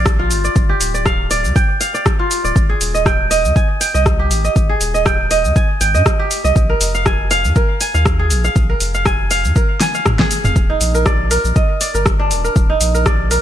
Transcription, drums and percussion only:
0.06 kick loud
0.06 cross-stick loud
0.06 cabasa soft
0.31 open hi-hat medium
0.31 cabasa medium
0.45 cabasa medium
0.56 kick loud
0.56 cabasa soft
0.81 open hi-hat medium
0.81 cabasa loud
0.95 cabasa medium
1.06 kick loud
1.06 cross-stick loud
1.06 cabasa soft
1.31 open hi-hat medium
1.31 cabasa medium
1.45 cabasa medium
1.56 kick loud
1.56 cabasa soft
1.81 open hi-hat medium
1.81 cabasa medium
1.95 cabasa medium
2.06 kick loud
2.06 cross-stick loud
2.06 cabasa soft
2.31 open hi-hat medium
2.31 cabasa loud
2.45 cabasa medium
2.56 kick loud
2.56 cabasa soft
2.81 open hi-hat medium
2.81 cabasa loud
2.95 cabasa medium
3.06 kick loud
3.06 cross-stick loud
3.06 cabasa soft
3.31 open hi-hat medium
3.31 cabasa medium
3.45 cabasa medium
3.56 kick loud
3.56 cabasa soft
3.81 open hi-hat medium
3.81 cabasa medium
3.95 cabasa medium
4.06 kick loud
4.06 cross-stick loud
4.06 cabasa soft
4.31 open hi-hat medium
4.31 cabasa medium
4.45 cabasa medium
4.56 kick loud
4.56 cabasa soft
4.81 open hi-hat medium
4.81 cabasa medium
4.95 cabasa soft
5.06 kick loud
5.06 cross-stick loud
5.06 cabasa soft
5.31 open hi-hat medium
5.31 cabasa medium
5.45 cabasa medium
5.56 kick loud
5.56 cabasa soft
5.81 open hi-hat medium
5.81 cabasa medium
5.95 cabasa soft
6.06 kick loud
6.06 cross-stick loud
6.06 cabasa soft
6.31 open hi-hat medium
6.31 cabasa medium
6.45 cabasa medium
6.56 kick loud
6.56 cabasa soft
6.81 open hi-hat medium
6.81 cabasa medium
6.95 cabasa soft
7.06 kick loud
7.06 cross-stick loud
7.06 cabasa soft
7.31 open hi-hat medium
7.31 cabasa medium
7.45 cabasa medium
7.56 kick loud
7.56 cabasa soft
7.81 open hi-hat medium
7.81 cabasa medium
7.95 cabasa soft
8.06 kick loud
8.06 cross-stick medium
8.06 cabasa soft
8.30 open hi-hat medium
8.30 cabasa medium
8.44 cabasa soft
8.56 kick loud
8.56 cabasa soft
8.80 open hi-hat medium
8.80 cabasa medium
8.94 cabasa soft
9.06 kick loud
9.06 cross-stick loud
9.06 cabasa soft
9.31 open hi-hat medium
9.31 cabasa medium
9.45 cabasa medium
9.56 kick loud
9.56 cabasa soft
9.81 snare medium
9.81 open hi-hat medium
9.81 cabasa medium
9.94 cabasa medium
10.06 kick loud
10.06 cross-stick loud
10.06 mid tom medium
10.06 cabasa soft
10.19 kick medium
10.19 snare medium
10.31 open hi-hat medium
10.31 cabasa medium
10.44 mid tom medium
10.44 cabasa soft
10.56 kick loud
10.56 cabasa soft
10.81 open hi-hat loud
10.81 cabasa medium
10.95 cabasa medium
11.06 kick loud
11.06 cross-stick loud
11.06 cabasa soft
11.31 open hi-hat medium
11.31 cabasa medium
11.45 cabasa medium
11.56 kick loud
11.56 cabasa soft
11.81 open hi-hat medium
11.81 cabasa medium
11.95 cabasa medium
12.06 kick loud
12.06 cross-stick loud
12.06 cabasa soft
12.31 open hi-hat medium
12.31 cabasa medium
12.45 cabasa soft
12.56 kick loud
12.56 cabasa soft
12.81 open hi-hat medium
12.81 cabasa loud
12.95 cabasa medium
13.06 kick loud
13.06 cross-stick loud
13.06 cabasa soft
13.31 open hi-hat medium
13.31 cabasa medium

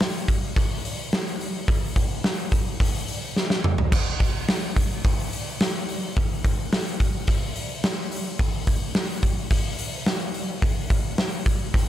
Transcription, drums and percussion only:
0.00 snare loud
0.00 open hi-hat medium
0.28 kick medium
0.28 open hi-hat medium
0.56 kick medium
0.56 open hi-hat medium
0.85 open hi-hat medium
1.13 snare loud
1.13 open hi-hat medium
1.41 open hi-hat medium
1.68 kick loud
1.68 open hi-hat medium
1.96 kick medium
1.96 open hi-hat medium
2.24 snare loud
2.24 open hi-hat medium
2.52 kick medium
2.52 open hi-hat medium
2.80 kick loud
2.80 open hi-hat loud
3.08 open hi-hat medium
3.36 snare medium
3.50 snare medium
3.64 mid tom loud
3.78 floor tom loud
3.92 kick loud
3.92 splash medium
3.92 crash loud
4.20 kick medium
4.20 open hi-hat medium
4.48 snare loud
4.48 open hi-hat medium
4.76 kick medium
4.76 open hi-hat medium
5.05 kick loud
5.05 open hi-hat loud
5.33 open hi-hat medium
5.61 snare loud
5.61 open hi-hat medium
5.89 open hi-hat medium
6.17 kick loud
6.17 open hi-hat medium
6.45 kick medium
6.45 open hi-hat medium
6.72 snare loud
6.72 open hi-hat medium
7.00 kick medium
7.00 open hi-hat medium
7.27 kick medium
7.27 open hi-hat medium
7.56 open hi-hat medium
7.84 snare loud
7.84 open hi-hat medium
8.12 open hi-hat medium
8.39 kick loud
8.39 open hi-hat medium
8.67 kick medium
8.67 open hi-hat medium
8.95 snare loud
8.95 open hi-hat medium
9.23 kick medium
9.23 open hi-hat medium
9.51 kick loud
9.51 open hi-hat loud
9.79 open hi-hat medium
10.06 snare loud
10.06 open hi-hat medium
10.34 open hi-hat medium
10.62 kick loud
10.62 open hi-hat medium
10.90 kick medium
10.90 open hi-hat medium
11.18 snare loud
11.18 open hi-hat medium
11.46 kick medium
11.46 open hi-hat medium
11.74 kick loud
11.74 open hi-hat medium

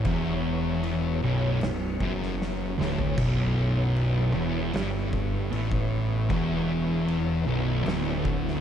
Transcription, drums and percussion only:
0.05 kick loud
0.05 crash medium
0.83 crash medium
1.61 snare loud
1.61 crash medium
2.00 kick medium
2.22 snare soft
2.42 snare medium
2.81 snare medium
2.98 floor tom medium
3.18 kick loud
3.18 crash loud
3.18 crash medium
3.96 crash medium
4.74 snare loud
4.74 crash medium
5.13 kick loud
5.53 crash medium
5.71 kick medium
6.30 kick loud
6.30 crash medium
7.08 crash medium
7.86 snare loud
7.86 crash medium
8.25 kick loud
8.48 snare soft

